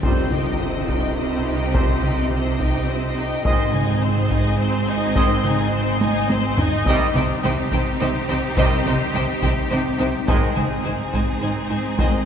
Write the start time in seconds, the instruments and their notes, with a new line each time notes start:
0.01 double bass section C2, cello section C3, trombone section G3, french horn section C4 G4, viola section C4, string section C4 D#4 G4 C5, trumpet section C5, violin section C5 D#5, taiko, tam-tam, sub drop
0.06 trombone section D#3
0.31 viola section D#4, violin section D#5 G5, taiko mid
0.59 viola section C4, violin section C5 D#5
0.88 viola section D#4, violin section D#5 G5, taiko
1.16 viola section C4, violin section C5 D#5
1.45 viola section D#4, violin section D#5 G5
1.73 trombone section D#3 G3, viola section C4, french horn section C4 G4, violin section C5 D#5, trumpet section C5, taiko
2.02 viola section D#4, violin section D#5 G5, taiko mid
2.32 viola section C4, violin section C5 D#5
2.59 viola section D#4, violin section D#5 G5, taiko
2.88 viola section C4, violin section C5 D#5
3.17 viola section D#4, violin section D#5 G5
3.44 double bass section G#1, cello section G#2, trombone section D#3 G#3, viola section C4, string section C4 D#4 G#4 C5, french horn section C4 D#4, violin section C5 C6, trumpet section D#5, taiko
3.73 viola section D#4, violin section D#5 G#5, taiko mid
4.02 viola section C4, violin section C5 C6
4.30 viola section D#4, violin section D#5 G#5, taiko
4.59 viola section C4, violin section C5 C6
4.87 viola section D#4, violin section D#5 G#5
5.15 trombone section D#3 G#3, french horn section C4 D#4, viola section C4, violin section C5 C6, trumpet section D#5, taiko
5.44 viola section D#4, violin section D#5 G#5, taiko mid
5.73 viola section C4, violin section C5 C6
6.01 viola section D#4, violin section D#5 G#5, taiko high
6.29 viola section C4, violin section C5 C6, taiko high
6.58 viola section D#4, violin section D#5 G#5, taiko low
6.86 double bass section C2, cello section C3, trombone section D#3 G3, french horn section C4 D#4, string section C4 D#4 G4 C5, viola section D#4, violin section C5 G5, trumpet section D#5, taiko
7.14 double bass section C2, cello section C3, viola section D#4, violin section C5 G5, taiko mid
7.43 double bass section C2, cello section C3, viola section D#4, violin section C5 G5
7.72 double bass section C2, cello section C3, viola section D#4, violin section C5 G5, taiko
8.00 double bass section C2, cello section C3, viola section D#4, violin section C5 G5
8.29 double bass section C2, cello section C3, viola section D#4, violin section C5 G5
8.57 double bass section C2, cello section C3, trombone section D#3 G3, french horn section C4 D#4, viola section D#4, violin section C5 G5, trumpet section D#5, taiko
8.85 double bass section C2, cello section C3, viola section D#4, violin section C5 G5, taiko mid
9.14 double bass section C2, cello section C3, viola section D#4, violin section C5 G5
9.42 double bass section C2, cello section C3, viola section D#4, violin section C5 G5, taiko
9.70 double bass section C2, cello section C3, viola section D#4, violin section C5 G5
9.98 double bass section C2, cello section C3, viola section D#4, violin section C5 G5, taiko rim
10.27 double bass section G#1, cello section G#2, trombone section D#3 G#3, french horn section C4 D#4, string section C4 D#4 G#4 C5, viola section D#4, violin section C5 G#5, trumpet section D#5, taiko
10.55 double bass section G#1, cello section G#2, viola section D#4, violin section C5 G#5, taiko mid
10.84 double bass section G#1, cello section G#2, viola section D#4, violin section C5 G#5
11.13 double bass section G#1, cello section G#2, viola section D#4, violin section C5 G#5, taiko
11.41 double bass section G#1, cello section G#2, viola section D#4, violin section C5 G#5
11.69 double bass section G#1, cello section G#2, viola section D#4, violin section C5 G#5
11.98 double bass section G#1, cello section G#2, trombone section D#3 G#3, french horn section C4 D#4, viola section D#4, violin section C5 G#5, trumpet section D#5, taiko